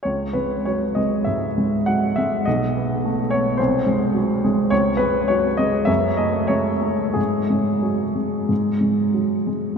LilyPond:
<<
  \new Staff \with { instrumentName = "Grand piano" } { \time 4/4 \key cis \minor \tempo 4 = 98 cis''8 b'8 cis''8 dis''8 e''4 fis''8 e''8 | dis''4. cis''8 bis'4. r8 | cis''8 b'8 cis''8 dis''8 e''8 dis''8 cis''4 | gis'2. r4 | }
  \new Staff \with { instrumentName = "Grand piano" } { \clef bass \time 4/4 \key cis \minor cis,8 gis8 fis8 gis8 gis,8 gis8 fis8 gis8 | b,,8 b8 a8 b8 bis,,8 gis8 fis8 gis8 | cis,8 gis8 fis8 gis8 fis,8 a8 gis8 a8 | gis,8 gis8 fis8 gis8 gis,8 gis8 fis8 gis8 | }
>>